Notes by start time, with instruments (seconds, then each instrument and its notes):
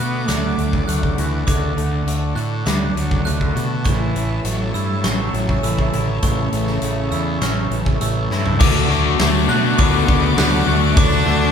Already playing: clean electric guitar D3 A3, cello B3, string section A4 D5 F#5 D6
0.00 fingered electric bass B2, clean electric guitar F#4, glockenspiel F#6
0.25 fingered electric bass D2, cello A3, glockenspiel D6, snare, closed hi-hat
0.30 clean electric guitar D4
0.58 fingered electric bass D2, clean electric guitar D3, closed hi-hat
0.73 kick
0.87 fingered electric bass D2, cello F#3, clean electric guitar A3, glockenspiel F#6, closed hi-hat
1.03 kick
1.16 fingered electric bass D2, cello E3, clean electric guitar F#4, closed hi-hat
1.46 fingered electric bass D2, cello D3, clean electric guitar D3, string section A5, glockenspiel D6, kick, closed hi-hat
1.77 fingered electric bass D2, clean electric guitar A3, closed hi-hat
2.06 fingered electric bass D2, clean electric guitar A3, closed hi-hat
2.35 fingered electric bass A2, clean electric guitar F#4, glockenspiel F#6, closed hi-hat
2.66 fingered electric bass D2, cello G3, clean electric guitar D4, glockenspiel D6, snare, closed hi-hat
2.95 fingered electric bass D2, clean electric guitar D3, cello F#3, closed hi-hat
3.11 kick
3.25 fingered electric bass D2, cello D3, clean electric guitar A3, glockenspiel F#6, closed hi-hat
3.41 kick
3.55 fingered electric bass B2, clean electric guitar F#4, closed hi-hat
3.84 fingered electric bass A1, clean electric guitar A2, cello E3, string section A4 C#5 E5, glockenspiel C#6, kick, closed hi-hat
4.14 fingered electric bass A1, clean electric guitar E3, closed hi-hat
4.44 fingered electric bass A1, cello F#3, clean electric guitar A3, closed hi-hat
4.74 fingered electric bass G2, cello G3, clean electric guitar E4, glockenspiel E6, closed hi-hat
5.03 fingered electric bass A1, cello F#3, clean electric guitar C#4, glockenspiel C#6, snare, closed hi-hat
5.33 fingered electric bass A1, clean electric guitar E3, closed hi-hat
5.49 kick
5.63 fingered electric bass A1, cello E3, clean electric guitar A3, glockenspiel E6, closed hi-hat
5.79 kick
5.93 fingered electric bass A1, cello D3, clean electric guitar E4, closed hi-hat
6.22 fingered electric bass A1, clean electric guitar A2, cello C#3, glockenspiel C#6, kick, closed hi-hat
6.52 fingered electric bass A1, clean electric guitar E3, closed hi-hat
6.67 snare
6.82 fingered electric bass A1, clean electric guitar A3, closed hi-hat
7.11 fingered electric bass E2, clean electric guitar E4, glockenspiel E6, closed hi-hat
7.41 fingered electric bass A1, clean electric guitar C#4, glockenspiel C#6, snare, closed hi-hat
7.71 fingered electric bass A1, clean electric guitar E3, closed hi-hat
7.86 kick
8.01 fingered electric bass A1, clean electric guitar A3, glockenspiel E6, closed hi-hat
8.30 fingered electric bass G2, clean electric guitar E4, snare
8.46 floor tom
8.59 fingered electric bass D2, overdriven electric guitar D3 A3 D4 F#4, clean electric guitar D3, string section A4 D5 F#5 D6, glockenspiel D6, kick, crash
8.88 fingered electric bass D2, overdriven electric guitar D3 A3 D4 F#4, clean electric guitar A3, snare
9.18 fingered electric bass D2, overdriven electric guitar D3 A3 D4 F#4, clean electric guitar A3, snare, open hi-hat
9.47 fingered electric bass B2, overdriven electric guitar D3 A3 D4 F#4, cello A3, clean electric guitar F#4, glockenspiel F#6, snare
9.76 fingered electric bass D2, overdriven electric guitar D3 A3 D4 F#4, cello B3, clean electric guitar D4, glockenspiel D6, kick, open hi-hat
10.07 fingered electric bass D2, overdriven electric guitar D3 A3 D4 F#4, clean electric guitar D3, kick
10.36 fingered electric bass D2, overdriven electric guitar D3 A3 D4 F#4, clean electric guitar A3, glockenspiel F#6, snare, open hi-hat
10.66 fingered electric bass D2, overdriven electric guitar D3 A3 D4 F#4, cello A3, clean electric guitar F#4
10.96 fingered electric bass D2, overdriven electric guitar D3 A3 D4 F#4, clean electric guitar D3, cello D4, glockenspiel D6, kick, open hi-hat
11.26 fingered electric bass D2, overdriven electric guitar D3 A3 D4 F#4, clean electric guitar A3, snare